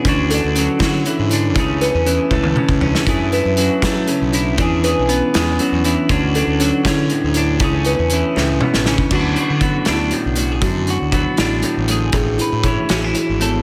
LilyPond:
<<
  \new Staff \with { instrumentName = "Kalimba" } { \time 6/8 \key d \lydian \tempo 4. = 79 d'8 a'8 cis'8 e'8 d'8 e'8 | e'8 b'8 cis'8 e'8 cis'8 d'8 | e'8 b'8 cis'8 e'8 cis'8 d'8 | e'8 b'8 cis'8 e'8 cis'8 d'8 |
d'8 a'8 cis'8 e'8 d'8 e'8 | e'8 b'8 cis'8 e'8 cis'8 d'8 | fis'8 d'8 d'8 e'8 d'8 a8 | fis'8 d'8 d'8 e'8 d'8 a8 |
gis'8 e'8 e'8 fis'8 e'8 b8 | }
  \new Staff \with { instrumentName = "Clean electric guitar" } { \time 6/8 \key d \lydian << { <cis' d' fis'>8 d'2~ d'8 | <a cis' gis'>8 cis'4 a4 cis'8 | <a e' gis'>8 e'4 a4 e'8 | <d' gis'>8 gis'2~ gis'8 |
<cis' d' fis'>8 d'4 cis'4 d'8 | <a cis' gis'>8 cis'2~ cis'8 | <fis b d' fis'>8 fis'8 b8 d'4 fis'16 gis'16 | r8 fis'8 b8 d'4 gis'8 |
r8 b'8 cis'8 cis'16 e'8. a'8 | } \\ { d4 fis8 fis8 e8 d8 | cis4 e4 cis4 | fis,4 fis4 cis4 | e4 b8 gis8 fis8 e8 |
d4 fis4 a,4 | cis4 e8 a,8 b,8 cis8 | d4 fis4 a,4 | d4 fis4 a,4 |
a,4 e2 | } >> }
  \new Staff \with { instrumentName = "Fingered electric bass" } { \clef bass \time 6/8 \key d \lydian d,8. d,8 r16 d8 r16 gis,8. | cis,8. e,8 r16 cis,8 r16 cis,8 r16 | fis,8. fis,8 r16 fis8 r16 b,,8. | e,8. b,,8 r16 e,8 r16 e,8 r16 |
d,8. d,8 r16 d8 r16 d,8. | cis,8. e,8 r16 cis,8 r16 a,,8 r16 | d,8 r16 d8 r16 d,8 r16 b,,8. | fis,8. d,8 r16 a,,8 r16 a,,8. |
a,,8 r16 a,8 r16 a,,8 r16 gis,,8. | }
  \new DrumStaff \with { instrumentName = "Drums" } \drummode { \time 6/8 <hh bd>8 hh8 hh8 <hh bd sn>8 hh8 hh8 | <hh bd>8 hh8 hh8 bd16 tommh16 toml16 bd16 tomfh16 sn16 | <hh bd>8 hh8 hh8 <hh bd sn>8 hh8 hh8 | <hh bd>8 hh8 hh8 <hh sn>8 hh8 hh8 |
<hh bd>8 hh8 hh8 <hh bd sn>8 hh8 hh8 | <hh bd>8 hh8 hh8 sn8 toml16 sn16 sn16 bd16 | <cymc bd>8 hh8 <hh bd>8 <hh sn>8 hh8 hh8 | <hh bd>8 hh8 <hh bd>8 <hh sn>8 hh8 hh8 |
<hh bd>8 hh8 <hh bd>8 <hh sn>8 hh8 hh8 | }
>>